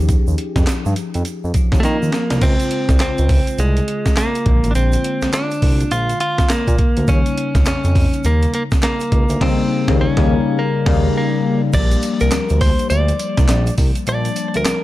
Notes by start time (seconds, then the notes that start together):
Already playing: D#2 F3 C#4 D#4 G4
0.09 kick, closed hi-hat, shaker
0.27 D#2, shaker
0.38 closed hi-hat
0.56 F2, kick, snare, closed hi-hat, shaker
0.67 snare, clap, closed hi-hat, shaker
0.86 G2, shaker
0.96 closed hi-hat, shaker
1.14 F2, closed hi-hat, shaker
1.25 closed hi-hat, shaker
1.44 F2, shaker
1.54 F3 C#4 D#4 F4, kick, closed hi-hat, shaker
1.72 D#2, kick, snare, closed hi-hat, shaker
1.80 A3, snare, closed hi-hat
1.84 D#3 A#3, shaker
2.03 D#2, shaker
2.12 snare, closed hi-hat, shaker
2.30 C2, snare, closed hi-hat, shaker
2.40 C#2 C#3 G#3 C4 F4, kick, closed hi-hat, crash, shaker
2.60 closed hi-hat, shaker
2.71 closed hi-hat
2.89 C2, kick, snare, closed hi-hat, shaker
3.00 C#2 C4, snare, clap, closed hi-hat, shaker
3.18 C#2, closed hi-hat, shaker
3.29 kick, open hi-hat
3.47 closed hi-hat, shaker
3.58 C2 G#3, closed hi-hat, shaker
3.77 closed hi-hat, shaker
3.88 closed hi-hat
4.06 kick, snare, closed hi-hat, shaker
4.17 A#3, snare, clap, closed hi-hat, shaker
4.35 closed hi-hat, shaker
4.45 A#1 D3 G#3 A#3 F4, kick, closed hi-hat
4.64 A1, closed hi-hat, shaker
4.71 D4
4.75 A#1 C4, closed hi-hat, shaker
4.92 closed hi-hat, shaker
5.04 closed hi-hat
5.22 C2, snare, closed hi-hat, shaker
5.33 D4, snare, clap, closed hi-hat, shaker
5.51 closed hi-hat, shaker
5.62 C2, kick, open hi-hat
5.80 closed hi-hat, shaker
5.91 A#1 F4, closed hi-hat, shaker
6.09 closed hi-hat, shaker
6.20 F4, closed hi-hat
6.38 kick, snare, closed hi-hat, shaker
6.49 A#3, snare, clap, closed hi-hat, shaker
6.68 A#2, kick, closed hi-hat, shaker
6.78 kick, closed hi-hat
6.97 D2, closed hi-hat, shaker
7.08 D#2 C#3 G3 A#3 C#4 D#4, kick, closed hi-hat, shaker
7.26 closed hi-hat, shaker
7.38 closed hi-hat
7.55 C#2, kick, snare, closed hi-hat, shaker
7.66 F2 C#4, snare, clap, closed hi-hat, shaker
7.84 F2, closed hi-hat, shaker
7.95 kick, open hi-hat
8.13 closed hi-hat, shaker
8.24 D#2 A#3, closed hi-hat, shaker
8.42 closed hi-hat, shaker
8.54 A#3, closed hi-hat
8.71 kick, snare, closed hi-hat, shaker
8.82 A#3, snare, clap, closed hi-hat, shaker
9.00 closed hi-hat, shaker
9.12 C#2, kick, closed hi-hat
9.29 D2, closed hi-hat, shaker
9.40 D#2 C#3 G3 A#3 C4 D#4, kick, snare, crash
9.88 D#2 C#3 G3 A#3 D#4, kick, snare
10.01 C#4
10.17 D#2 C#3 G3 A#3 D#4, kick, snare
10.59 A#3
10.86 D#2 C#3 G3 A#3 D#4, kick, snare, crash
11.18 A#3
11.73 A#1 F3 G3 A#3 D4 G4 D5, kick, closed hi-hat, crash, shaker
11.91 closed hi-hat, shaker
12.02 closed hi-hat, tambourine, shaker
12.20 C2 A#4, closed hi-hat, shaker
12.31 D2, snare, clap, closed hi-hat, tambourine, shaker
12.49 D2, closed hi-hat, shaker
12.61 C5, kick, open hi-hat, tambourine
12.79 closed hi-hat, shaker
12.90 D2 D5, closed hi-hat, tambourine, shaker
13.08 closed hi-hat, shaker
13.19 closed hi-hat, tambourine, shaker
13.37 C2, kick, snare, closed hi-hat, shaker
13.48 A#1, snare, clap, closed hi-hat, tambourine, shaker
13.67 closed hi-hat, shaker
13.78 C2, kick, open hi-hat, tambourine
13.95 closed hi-hat, shaker
14.06 A#1 F3 G3 A#3 D4 D5 A5, closed hi-hat, shaker
14.25 closed hi-hat, shaker
14.36 closed hi-hat, tambourine, shaker
14.54 D2 A#4, closed hi-hat, shaker
14.65 C2, snare, clap, closed hi-hat, tambourine, shaker